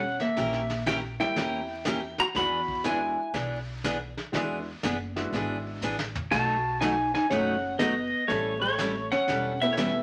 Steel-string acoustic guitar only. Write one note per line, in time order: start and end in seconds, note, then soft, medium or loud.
0.37 0.60 E3 medium
0.37 0.60 A#3 medium
0.37 0.60 C#4 medium
0.37 0.60 G4 medium
0.37 0.61 A#4 medium
0.86 0.99 E3 medium
0.86 0.99 A#3 medium
0.86 0.99 C#4 medium
0.86 0.99 G4 medium
0.86 0.99 A#4 medium
1.36 1.59 E3 medium
1.36 1.59 A#3 medium
1.36 1.59 C#4 medium
1.36 1.60 G4 medium
1.36 1.60 A#4 medium
1.86 1.98 E3 medium
1.86 1.98 A#3 medium
1.86 1.98 C#4 medium
1.86 1.99 G4 medium
1.86 1.99 A#4 medium
2.36 2.58 E3 medium
2.36 2.59 B3 medium
2.36 2.59 D4 medium
2.36 2.59 G#4 medium
2.84 2.97 E3 medium
2.84 2.97 B3 medium
2.84 2.97 D4 medium
2.84 2.97 G#4 medium
3.34 3.57 E3 medium
3.34 3.57 B3 medium
3.34 3.57 D4 medium
3.34 3.58 G#4 medium
3.84 3.96 E3 medium
3.84 3.97 B3 medium
3.84 3.96 D4 medium
3.84 3.97 G#4 medium
4.33 4.56 E3 medium
4.33 4.57 B3 medium
4.33 4.57 D4 medium
4.33 4.57 G#4 medium
4.84 4.96 E3 medium
4.84 4.96 B3 medium
4.84 4.96 D4 medium
4.84 4.96 G#4 medium
5.33 5.56 E3 medium
5.33 5.56 B3 medium
5.33 5.56 D4 medium
5.33 5.57 G#4 medium
5.83 5.95 E3 medium
5.83 5.95 B3 medium
5.83 5.95 D4 medium
5.83 5.95 G#4 medium
6.32 6.55 B2 medium
6.32 6.55 F#3 medium
6.32 6.55 A3 medium
6.32 6.55 D#4 medium
6.32 6.55 F#4 medium
6.82 6.94 B2 medium
6.82 6.94 F#3 medium
6.82 6.94 A3 medium
6.82 6.94 D#4 medium
6.82 6.94 F#4 medium
7.32 7.54 B2 medium
7.32 7.54 F#3 medium
7.32 7.54 A3 medium
7.32 7.54 D#4 medium
7.32 7.55 F#4 medium
7.80 7.92 B2 medium
7.80 7.92 F#3 medium
7.80 7.93 A3 medium
7.80 7.93 D#4 medium
7.80 7.93 F#4 medium
8.29 8.53 E3 medium
8.29 8.53 G3 medium
8.29 8.53 C#4 medium
8.29 8.53 E4 medium
8.29 8.53 A4 medium
8.79 8.92 E3 medium
8.79 8.92 G3 medium
8.79 8.92 C#4 medium
8.79 8.92 E4 medium
8.79 8.92 A4 medium
9.29 9.52 E3 medium
9.29 9.52 G3 medium
9.29 9.52 C#4 medium
9.29 9.52 E4 medium
9.29 9.52 A4 medium
9.77 9.90 E3 medium
9.77 9.90 G3 medium
9.77 9.90 C#4 medium
9.77 9.90 E4 medium
9.77 9.91 A4 medium